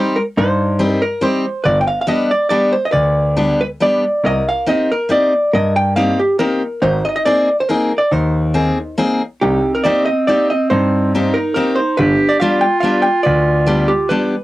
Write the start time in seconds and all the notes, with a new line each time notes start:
Already playing: G3 C4 D#4 G4 C5
0.16 A#4
0.37 G2 D#4 C5
0.79 G3 C4 D#4 G4
0.89 A#4
1.02 A#4
1.21 G3 C4 D#4 G4 C5
1.64 G1 B4 D5
1.81 G5
1.87 F5
2.01 F5
2.07 G3 B3 D4 G4 D#5
2.31 D5
2.49 G3 B3 D4 G4 D5
2.73 C5
2.85 D#5
2.91 D2 B4 D5
3.37 G3 B3 D4 G4
3.61 B4
3.80 G3 B3 D4 G4 D5
4.24 C2 A#4 D#5
4.49 F5
4.66 A#3 C4 D#4 G4 D#5
4.92 A#4
5.09 A#3 C4 D#4 G4 D5
5.53 G2 A#4 D#5
5.76 G5
5.96 A#3 C4 D#4 G4 F5
6.20 G4
6.39 A#3 C4 D#4 G4 A#4
6.82 G#1 D#4 C5
7.05 D#5
7.16 D#5
7.25 A#3 C4 D#4 G#4 D5
7.60 C5
7.69 A#3 C4 D#4 G#4 A#4
7.98 D5
8.11 D#2 D#4 C5
8.54 A#3 C4 D#4 G#4
8.98 A#3 C4 D#4 G#4
9.41 C2 C4 D#4 G4
9.75 A#4
9.84 A#3 C4 D#4 G4 D5
10.05 D#5
10.27 A#3 C4 D#4 G4 D5
10.50 D#5
10.70 G2 D#4 C5
11.14 A#3 C4 D#4 G4
11.34 A#4
11.54 A#3 C4 D#4 G4 A#4
11.76 C5
11.97 G1 D4 G4 B4
12.29 D5
12.40 G3 B3 D4 F4 G4 F5
12.61 G5
12.80 G3 B3 D4 G4 F5
13.02 G5
13.23 D2 B4 D5
13.67 G3 B3 D4 G4
13.88 G4
14.09 G3 B3 D4 G4 B4